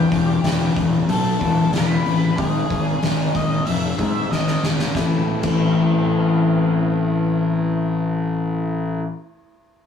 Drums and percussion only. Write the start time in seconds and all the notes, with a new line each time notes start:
0.12 kick, open hi-hat
0.44 snare, open hi-hat
0.76 kick, open hi-hat
1.09 open hi-hat
1.41 kick, open hi-hat
1.73 snare, open hi-hat
2.06 open hi-hat
2.38 kick, open hi-hat
2.70 kick, open hi-hat
3.03 snare, open hi-hat
3.35 kick, open hi-hat
3.67 open hi-hat
3.99 kick, open hi-hat
4.32 snare
4.47 snare
4.63 snare
4.79 snare
4.95 kick, snare
5.43 kick, crash